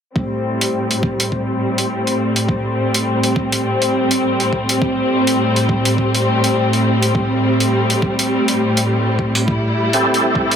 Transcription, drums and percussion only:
0.16 kick
0.61 closed hi-hat
0.91 closed hi-hat
1.03 kick
1.20 closed hi-hat
1.32 kick
1.78 closed hi-hat
2.07 closed hi-hat
2.36 closed hi-hat
2.49 kick
2.94 closed hi-hat
3.23 closed hi-hat
3.36 kick
3.52 closed hi-hat
3.82 closed hi-hat
4.11 closed hi-hat
4.40 closed hi-hat
4.53 kick
4.69 closed hi-hat
4.82 kick
5.27 closed hi-hat
5.56 closed hi-hat
5.69 kick
5.85 closed hi-hat
5.98 kick
6.15 closed hi-hat
6.44 closed hi-hat
6.73 closed hi-hat
7.03 closed hi-hat
7.15 kick
7.60 closed hi-hat
7.90 closed hi-hat
8.02 kick
8.19 closed hi-hat
8.48 closed hi-hat
8.77 closed hi-hat
9.19 kick
9.35 closed hi-hat
9.48 kick
9.93 closed hi-hat
10.14 closed hi-hat
10.35 kick
10.51 closed hi-hat

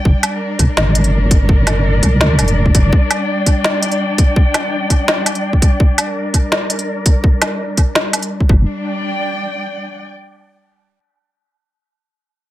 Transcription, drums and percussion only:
0.05 kick
0.23 closed hi-hat, low woodblock
0.59 kick, closed hi-hat
0.77 snare
0.95 closed hi-hat
1.04 closed hi-hat
1.31 kick, closed hi-hat
1.49 kick
1.67 snare, closed hi-hat, low woodblock
2.03 kick, closed hi-hat
2.21 snare
2.39 closed hi-hat, low woodblock
2.48 closed hi-hat
2.66 kick
2.75 kick, closed hi-hat
2.93 kick
3.11 closed hi-hat, low woodblock
3.46 kick, closed hi-hat
3.64 snare
3.83 closed hi-hat
3.92 closed hi-hat
4.18 kick, closed hi-hat
4.36 kick
4.54 snare, closed hi-hat, low woodblock
4.90 kick, closed hi-hat
5.08 snare
5.26 closed hi-hat, low woodblock
5.35 closed hi-hat
5.53 kick
5.62 kick, closed hi-hat
5.80 kick
5.98 closed hi-hat, low woodblock
6.34 kick, closed hi-hat
6.52 snare
6.70 closed hi-hat
6.79 closed hi-hat
7.06 kick, closed hi-hat
7.24 kick
7.42 snare, closed hi-hat, low woodblock
7.77 kick, closed hi-hat
7.95 snare
8.13 closed hi-hat, low woodblock
8.22 closed hi-hat
8.40 kick
8.49 kick

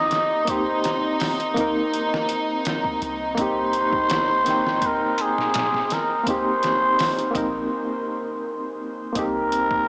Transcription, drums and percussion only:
0.11 snare, closed hi-hat
0.47 kick, closed hi-hat
0.84 snare, closed hi-hat
1.20 snare, open hi-hat
1.40 closed hi-hat
1.57 kick, closed hi-hat
1.94 closed hi-hat
2.14 snare
2.29 closed hi-hat
2.65 snare, closed hi-hat
2.84 kick
3.02 closed hi-hat
3.37 kick, closed hi-hat
3.73 closed hi-hat
3.93 kick
4.10 snare, closed hi-hat
4.46 snare, closed hi-hat
4.67 snare
4.82 kick, closed hi-hat
5.18 closed hi-hat
5.38 snare
5.54 snare, closed hi-hat
5.74 snare
5.90 snare, closed hi-hat
6.26 kick, closed hi-hat
6.63 snare, closed hi-hat
6.99 snare, open hi-hat
7.19 closed hi-hat
7.35 kick, closed hi-hat
9.15 kick, closed hi-hat
9.52 closed hi-hat
9.71 kick

